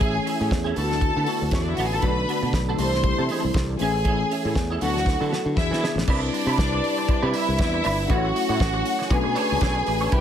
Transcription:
Already playing: A1 E3 A3 C#4 G#4 G#5
0.01 C#4 E4 G#4, kick, closed hi-hat
0.15 muted clean electric guitar stroke
0.26 C#4 E4 G#4, open hi-hat
0.39 A2 C#4 E4 G#4
0.51 E2, muted clean electric guitar stroke, kick, snare, closed hi-hat
0.64 C#4 E4 G#4
0.75 D2 D3 A3 B3 E4 F#4 A4 A5, open hi-hat
0.84 F#4
0.91 muted clean electric guitar stroke, snare
1.01 muted clean electric guitar stroke, kick, closed hi-hat
1.16 D3 B3 F#4 A4
1.26 B3 F#4 A4, open hi-hat
1.42 D2, muted clean electric guitar stroke
1.51 E2 C#4 C#5, muted clean electric guitar stroke, kick, snare, closed hi-hat
1.61 D4 D5
1.68 E4 E5, muted clean electric guitar stroke
1.75 A1 B3 F#4 F#5, open hi-hat
1.80 F#4 A4
1.85 G#4 G#5
1.93 B3 F#4 A4 A5
2.02 B1 D3 A3 B3 D4 F#4 A4 B4 B5, kick, closed hi-hat
2.17 muted clean electric guitar stroke
2.28 D4 F#4 A4, open hi-hat
2.42 B2 D4 F#4 A4
2.53 B1, muted clean electric guitar stroke, kick, snare, closed hi-hat
2.69 D4 F#4 A4
2.76 C2 C3 E3 G3 A3 C4 D4 E4 G4 C5 C6, open hi-hat
2.80 A4
2.93 muted clean electric guitar stroke, snare
3.04 muted clean electric guitar stroke, kick, closed hi-hat
3.18 C3 C4 E4 A4
3.29 C4 E4 A4, open hi-hat
3.44 C2, muted clean electric guitar stroke
3.54 C2, muted clean electric guitar stroke, kick, snare, closed hi-hat
3.70 muted clean electric guitar stroke
3.78 A1 E3 A3 C#4 G#4 G#5, open hi-hat
3.83 E4 G#4
3.96 muted clean electric guitar stroke
4.05 C#4 E4 G#4, kick, closed hi-hat
4.20 muted clean electric guitar stroke
4.31 C#4 E4 G#4, open hi-hat
4.45 A2 C#4 E4 G#4
4.55 E2, muted clean electric guitar stroke, kick, snare, closed hi-hat
4.70 C#4 E4 G#4
4.80 D2 D3 F#3 B3 D4 E4 F#4 A4 F#5, open hi-hat
4.97 muted clean electric guitar stroke, snare
5.06 muted clean electric guitar stroke, kick, snare
5.20 D3 B3 F#4 A4
5.31 B3 F#4 A4, snare
5.46 D3, muted clean electric guitar stroke
5.56 E2 E3 B3 D4 E4 G#4 E5, muted clean electric guitar stroke, kick, snare
5.71 E3 B3 D4 G#4, snare
5.82 B3 D4 G#4, snare
5.95 A1, muted clean electric guitar stroke, snare
6.06 C2 C3 G3 C4 D4 E4 B4 D5, kick, crash
6.21 muted clean electric guitar stroke
6.33 muted clean electric guitar stroke, open hi-hat
6.46 C3 D4 E4 B4
6.58 C2, muted clean electric guitar stroke, kick, snare, closed hi-hat
6.73 muted clean electric guitar stroke
6.84 open hi-hat
6.98 muted clean electric guitar stroke
7.09 muted fingered electric bass stroke, muted clean electric guitar stroke, kick, closed hi-hat
7.23 C3 D4 E4 B4
7.34 D4 E4 B4 E5, open hi-hat
7.48 C2, muted clean electric guitar stroke
7.59 E2, muted clean electric guitar stroke, kick, snare, closed hi-hat
7.74 muted clean electric guitar stroke
7.84 G1 D4 E4 B4, open hi-hat
7.98 muted clean electric guitar stroke
8.08 A1 F#3 A3 C#4 E4 F#4 B4 C#5 F#5, kick, closed hi-hat
8.17 C#5
8.24 muted clean electric guitar stroke
8.35 muted clean electric guitar stroke, open hi-hat
8.49 A2 E4 F#4 C#5
8.60 A1, muted clean electric guitar stroke, kick, snare
8.74 muted clean electric guitar stroke
8.85 open hi-hat
8.99 muted clean electric guitar stroke, snare
9.10 B1 D3 A3 C#4 D4 F#4 G#4 B4 G#5, muted clean electric guitar stroke, kick, closed hi-hat
9.24 B2, muted clean electric guitar stroke
9.35 D4 A4 C#5, open hi-hat
9.50 C#2 D4 A4 C#5
9.61 B1 D4 A4 C#5, kick, snare, closed hi-hat
9.75 muted clean electric guitar stroke
9.86 A1, muted clean electric guitar stroke, open hi-hat
10.01 D4 A4 C#5
10.11 C2 C3 G3 C4 D4 E4 G4 B4 G5, kick, closed hi-hat

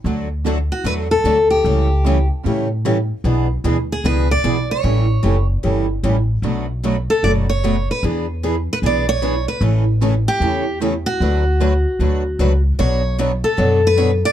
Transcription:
0.04 D2 D3 F#3 A3 D4 F#4 A4
0.44 D3 F#3 A3 D4 F#4 A4
0.72 F#4
0.84 E2 D3 F#3 A3 D4 F#4 A4 B4
1.11 A4
1.24 D2 D3 F#3 A3 D4 F#4 A4
1.50 G4
1.64 C#2 C#3 E3 G3 A3 C#4 E4 G4 A4 C#5
2.04 C#3 E3 G3 A3 C#4 E4 G4 A4 C#5
2.43 A2 C#3 E3 G3 A3 C#4 E4 G4 A4 C#5
2.85 C#3 E3 G3 A3 C#4 E4 G4 A4 C#5
3.24 B1 B2 E3 B3 D4 G#4 B4
3.64 D2 B2 E3 B3 D4 G#4 B4
3.92 G#4
4.04 C#2 B2 E3 B3 D4 G#4 B4
4.31 D5
4.44 B1 B2 E3 B3 D4 G#4 B4
4.71 C#5
4.83 A1 C#3 E3 G3 A3 C#4 E4 G4 A4
5.23 F#1 C#3 E3 G3 A3 C#4 E4 G4 A4
5.63 G1 C#3 E3 G3 A3 C#4 E4 G4 A4
6.03 A1 C#3 E3 G3 A3 C#4 E4 G4 A4
6.42 B1 B2 F#3 A3 D4 F#4 B4
6.84 B2 F#3 A3 D4 F#4 B4
7.10 A4
7.23 F#1 B2 F#3 A3 D4 F#4 B4 D5
7.49 C#5
7.64 B2 F#3 A3 D4 F#4 B4
7.91 B4
8.03 E2 E3 B3 D4 G#4 B4
8.43 E3 B3 D4 G#4 B4
8.73 B4
8.82 B1 E3 B3 D4 G#4 B4
8.86 D5
9.09 C#5
9.23 E3 B3 D4 G#4 B4
9.48 B4
9.61 A1 C#3 E3 A3 C#4 E4 A4
10.01 C#3 E3 A3 C#4 E4 A4
10.28 G4
10.40 E2 C#3 E3 A3 C#4 E4 A4
10.80 C#3 E3 A3 C#4 E4 A4
11.06 F#4
11.20 D2 D3 F#3 A3 D4 F#4 B4
11.60 D3 F#3 A3 D4 F#4 B4
11.99 D2 D3 F#3 A3 D4 F#4 B4
12.39 C#2 D3 F#3 A3 D4 F#4 B4
12.79 B1 B2 F#3 B3 D4 F#4 C#5
13.19 B2 F#3 B3 D4 F#4 C#5
13.44 A4
13.58 F#2 B2 F#3 B3 D4 F#4 C#5
13.87 B4
13.97 B2 F#3 B3 D4 F#4 C#5
14.25 D5

